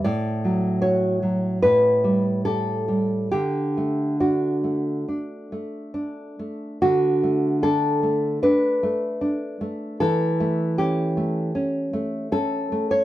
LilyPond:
\new Staff \with { instrumentName = "Nylon-string guitar" } { \time 4/4 \key d \major \tempo 4 = 76 << { d''4 cis''4 b'4 a'4 | g'4 fis'2~ fis'8 r8 | fis'4 a'4 b'2 | a'4 g'2 a'8. cis''16 | } \\ { a,8 fis8 fis'8 fis8 a,8 g8 g'8 g8 | d8 a8 d'8 a8 d'8 a8 d'8 a8 | d8 a8 d'8 a8 d'8 a8 d'8 a8 | e8 a8 cis'8 a8 cis'8 a8 cis'8 a8 | } >> }